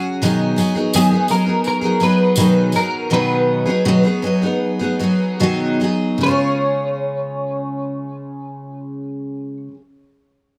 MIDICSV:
0, 0, Header, 1, 4, 480
1, 0, Start_track
1, 0, Tempo, 710900
1, 155, Time_signature, 4, 2, 24, 8
1, 1597, Tempo, 750000
1, 3037, Tempo, 801068
1, 3997, Tempo, 828729
1, 6524, End_track
2, 0, Start_track
2, 0, Title_t, "Clean electric guitar"
2, 0, Program_c, 0, 27
2, 648, Note_on_c, 0, 68, 97
2, 863, Note_off_c, 0, 68, 0
2, 886, Note_on_c, 0, 70, 93
2, 1123, Note_off_c, 0, 70, 0
2, 1131, Note_on_c, 0, 70, 108
2, 1370, Note_off_c, 0, 70, 0
2, 1372, Note_on_c, 0, 71, 115
2, 1847, Note_off_c, 0, 71, 0
2, 1850, Note_on_c, 0, 70, 96
2, 2083, Note_off_c, 0, 70, 0
2, 2089, Note_on_c, 0, 71, 107
2, 3496, Note_off_c, 0, 71, 0
2, 4006, Note_on_c, 0, 73, 87
2, 5937, Note_off_c, 0, 73, 0
2, 6524, End_track
3, 0, Start_track
3, 0, Title_t, "Steel-string acoustic guitar"
3, 0, Program_c, 1, 25
3, 0, Note_on_c, 1, 54, 67
3, 0, Note_on_c, 1, 61, 67
3, 0, Note_on_c, 1, 66, 74
3, 0, Note_on_c, 1, 68, 77
3, 142, Note_off_c, 1, 54, 0
3, 146, Note_on_c, 1, 47, 82
3, 147, Note_off_c, 1, 68, 0
3, 150, Note_on_c, 1, 54, 92
3, 151, Note_off_c, 1, 61, 0
3, 152, Note_on_c, 1, 51, 96
3, 153, Note_off_c, 1, 66, 0
3, 153, Note_on_c, 1, 59, 105
3, 155, Note_on_c, 1, 68, 106
3, 156, Note_on_c, 1, 63, 97
3, 373, Note_off_c, 1, 54, 0
3, 381, Note_off_c, 1, 59, 0
3, 381, Note_on_c, 1, 54, 72
3, 382, Note_off_c, 1, 63, 0
3, 385, Note_off_c, 1, 68, 0
3, 388, Note_off_c, 1, 47, 0
3, 389, Note_on_c, 1, 59, 72
3, 390, Note_on_c, 1, 63, 78
3, 391, Note_off_c, 1, 51, 0
3, 393, Note_on_c, 1, 68, 72
3, 498, Note_off_c, 1, 68, 0
3, 504, Note_off_c, 1, 63, 0
3, 506, Note_off_c, 1, 54, 0
3, 506, Note_on_c, 1, 68, 64
3, 507, Note_off_c, 1, 59, 0
3, 512, Note_on_c, 1, 63, 54
3, 516, Note_on_c, 1, 59, 57
3, 522, Note_on_c, 1, 54, 54
3, 628, Note_off_c, 1, 68, 0
3, 630, Note_off_c, 1, 54, 0
3, 631, Note_off_c, 1, 63, 0
3, 633, Note_off_c, 1, 59, 0
3, 634, Note_on_c, 1, 47, 76
3, 637, Note_on_c, 1, 51, 83
3, 638, Note_on_c, 1, 54, 90
3, 640, Note_on_c, 1, 63, 103
3, 641, Note_on_c, 1, 59, 96
3, 642, Note_on_c, 1, 68, 93
3, 742, Note_off_c, 1, 68, 0
3, 750, Note_on_c, 1, 68, 59
3, 752, Note_off_c, 1, 47, 0
3, 752, Note_off_c, 1, 63, 0
3, 754, Note_off_c, 1, 51, 0
3, 754, Note_off_c, 1, 54, 0
3, 755, Note_off_c, 1, 59, 0
3, 760, Note_on_c, 1, 63, 60
3, 763, Note_on_c, 1, 59, 52
3, 765, Note_on_c, 1, 54, 49
3, 856, Note_off_c, 1, 54, 0
3, 864, Note_off_c, 1, 59, 0
3, 864, Note_on_c, 1, 54, 58
3, 868, Note_off_c, 1, 63, 0
3, 870, Note_off_c, 1, 68, 0
3, 872, Note_on_c, 1, 59, 61
3, 876, Note_on_c, 1, 63, 65
3, 881, Note_on_c, 1, 68, 75
3, 977, Note_off_c, 1, 68, 0
3, 981, Note_off_c, 1, 63, 0
3, 984, Note_off_c, 1, 59, 0
3, 985, Note_on_c, 1, 68, 48
3, 987, Note_off_c, 1, 54, 0
3, 989, Note_on_c, 1, 63, 46
3, 992, Note_on_c, 1, 59, 43
3, 996, Note_on_c, 1, 54, 42
3, 1217, Note_off_c, 1, 68, 0
3, 1223, Note_off_c, 1, 63, 0
3, 1225, Note_on_c, 1, 68, 57
3, 1227, Note_off_c, 1, 59, 0
3, 1231, Note_on_c, 1, 63, 56
3, 1233, Note_off_c, 1, 54, 0
3, 1235, Note_on_c, 1, 59, 52
3, 1241, Note_on_c, 1, 54, 45
3, 1344, Note_off_c, 1, 54, 0
3, 1349, Note_off_c, 1, 59, 0
3, 1350, Note_off_c, 1, 68, 0
3, 1351, Note_off_c, 1, 63, 0
3, 1352, Note_on_c, 1, 54, 70
3, 1357, Note_on_c, 1, 59, 67
3, 1359, Note_on_c, 1, 63, 74
3, 1366, Note_on_c, 1, 68, 76
3, 1595, Note_off_c, 1, 54, 0
3, 1595, Note_off_c, 1, 59, 0
3, 1597, Note_off_c, 1, 63, 0
3, 1597, Note_on_c, 1, 47, 87
3, 1601, Note_off_c, 1, 68, 0
3, 1603, Note_on_c, 1, 51, 95
3, 1603, Note_on_c, 1, 54, 85
3, 1603, Note_on_c, 1, 59, 76
3, 1605, Note_on_c, 1, 63, 89
3, 1608, Note_on_c, 1, 68, 95
3, 1822, Note_off_c, 1, 54, 0
3, 1827, Note_off_c, 1, 59, 0
3, 1829, Note_off_c, 1, 63, 0
3, 1830, Note_on_c, 1, 54, 61
3, 1831, Note_off_c, 1, 47, 0
3, 1834, Note_off_c, 1, 51, 0
3, 1835, Note_on_c, 1, 59, 64
3, 1836, Note_off_c, 1, 68, 0
3, 1837, Note_on_c, 1, 63, 65
3, 1843, Note_on_c, 1, 68, 67
3, 2065, Note_off_c, 1, 59, 0
3, 2066, Note_off_c, 1, 54, 0
3, 2067, Note_on_c, 1, 47, 85
3, 2069, Note_off_c, 1, 68, 0
3, 2070, Note_off_c, 1, 63, 0
3, 2071, Note_on_c, 1, 51, 89
3, 2072, Note_on_c, 1, 59, 83
3, 2073, Note_on_c, 1, 54, 94
3, 2077, Note_on_c, 1, 63, 83
3, 2077, Note_on_c, 1, 68, 89
3, 2415, Note_off_c, 1, 68, 0
3, 2422, Note_off_c, 1, 63, 0
3, 2423, Note_on_c, 1, 68, 65
3, 2424, Note_off_c, 1, 59, 0
3, 2425, Note_off_c, 1, 47, 0
3, 2426, Note_off_c, 1, 54, 0
3, 2427, Note_off_c, 1, 51, 0
3, 2430, Note_on_c, 1, 63, 59
3, 2431, Note_on_c, 1, 59, 57
3, 2433, Note_on_c, 1, 54, 51
3, 2541, Note_off_c, 1, 54, 0
3, 2543, Note_off_c, 1, 59, 0
3, 2545, Note_off_c, 1, 68, 0
3, 2546, Note_off_c, 1, 63, 0
3, 2548, Note_on_c, 1, 47, 79
3, 2549, Note_on_c, 1, 51, 86
3, 2549, Note_on_c, 1, 54, 89
3, 2551, Note_on_c, 1, 59, 92
3, 2551, Note_on_c, 1, 68, 95
3, 2553, Note_on_c, 1, 63, 80
3, 2657, Note_off_c, 1, 68, 0
3, 2664, Note_off_c, 1, 63, 0
3, 2665, Note_on_c, 1, 68, 62
3, 2667, Note_off_c, 1, 59, 0
3, 2669, Note_off_c, 1, 47, 0
3, 2669, Note_off_c, 1, 51, 0
3, 2669, Note_off_c, 1, 54, 0
3, 2672, Note_on_c, 1, 63, 59
3, 2674, Note_on_c, 1, 59, 62
3, 2676, Note_on_c, 1, 54, 53
3, 2778, Note_off_c, 1, 54, 0
3, 2783, Note_off_c, 1, 59, 0
3, 2785, Note_on_c, 1, 54, 76
3, 2788, Note_off_c, 1, 63, 0
3, 2789, Note_off_c, 1, 68, 0
3, 2791, Note_on_c, 1, 59, 74
3, 2795, Note_on_c, 1, 63, 78
3, 2797, Note_on_c, 1, 68, 83
3, 2903, Note_off_c, 1, 68, 0
3, 2911, Note_off_c, 1, 54, 0
3, 2911, Note_off_c, 1, 63, 0
3, 2911, Note_on_c, 1, 68, 51
3, 2914, Note_off_c, 1, 59, 0
3, 2918, Note_on_c, 1, 63, 56
3, 2921, Note_on_c, 1, 59, 48
3, 2925, Note_on_c, 1, 54, 48
3, 3137, Note_off_c, 1, 68, 0
3, 3139, Note_off_c, 1, 63, 0
3, 3144, Note_off_c, 1, 59, 0
3, 3144, Note_on_c, 1, 68, 62
3, 3147, Note_on_c, 1, 63, 54
3, 3148, Note_off_c, 1, 54, 0
3, 3151, Note_on_c, 1, 59, 54
3, 3156, Note_on_c, 1, 54, 46
3, 3257, Note_off_c, 1, 54, 0
3, 3262, Note_off_c, 1, 59, 0
3, 3264, Note_off_c, 1, 63, 0
3, 3264, Note_on_c, 1, 54, 74
3, 3266, Note_off_c, 1, 68, 0
3, 3269, Note_on_c, 1, 59, 78
3, 3271, Note_on_c, 1, 63, 74
3, 3275, Note_on_c, 1, 68, 71
3, 3502, Note_off_c, 1, 54, 0
3, 3502, Note_off_c, 1, 59, 0
3, 3504, Note_off_c, 1, 63, 0
3, 3504, Note_off_c, 1, 68, 0
3, 3505, Note_on_c, 1, 47, 74
3, 3507, Note_on_c, 1, 51, 92
3, 3509, Note_on_c, 1, 54, 94
3, 3510, Note_on_c, 1, 59, 98
3, 3511, Note_on_c, 1, 63, 88
3, 3511, Note_on_c, 1, 68, 101
3, 3739, Note_off_c, 1, 54, 0
3, 3745, Note_off_c, 1, 59, 0
3, 3746, Note_on_c, 1, 54, 57
3, 3747, Note_off_c, 1, 63, 0
3, 3749, Note_off_c, 1, 47, 0
3, 3749, Note_off_c, 1, 68, 0
3, 3750, Note_off_c, 1, 51, 0
3, 3752, Note_on_c, 1, 59, 68
3, 3754, Note_on_c, 1, 63, 68
3, 3756, Note_on_c, 1, 68, 67
3, 3974, Note_on_c, 1, 49, 84
3, 3992, Note_off_c, 1, 54, 0
3, 3994, Note_on_c, 1, 56, 85
3, 3998, Note_off_c, 1, 59, 0
3, 3999, Note_off_c, 1, 63, 0
3, 4000, Note_off_c, 1, 68, 0
3, 4008, Note_on_c, 1, 61, 86
3, 4022, Note_on_c, 1, 65, 86
3, 4034, Note_on_c, 1, 68, 96
3, 6002, Note_off_c, 1, 49, 0
3, 6021, Note_off_c, 1, 56, 0
3, 6035, Note_off_c, 1, 61, 0
3, 6049, Note_off_c, 1, 65, 0
3, 6061, Note_off_c, 1, 68, 0
3, 6524, End_track
4, 0, Start_track
4, 0, Title_t, "Drums"
4, 155, Note_on_c, 9, 54, 54
4, 223, Note_off_c, 9, 54, 0
4, 391, Note_on_c, 9, 54, 51
4, 458, Note_off_c, 9, 54, 0
4, 631, Note_on_c, 9, 54, 91
4, 698, Note_off_c, 9, 54, 0
4, 865, Note_on_c, 9, 54, 54
4, 933, Note_off_c, 9, 54, 0
4, 1107, Note_on_c, 9, 54, 34
4, 1175, Note_off_c, 9, 54, 0
4, 1350, Note_on_c, 9, 54, 31
4, 1417, Note_off_c, 9, 54, 0
4, 1591, Note_on_c, 9, 54, 89
4, 1655, Note_off_c, 9, 54, 0
4, 1825, Note_on_c, 9, 54, 52
4, 1889, Note_off_c, 9, 54, 0
4, 6524, End_track
0, 0, End_of_file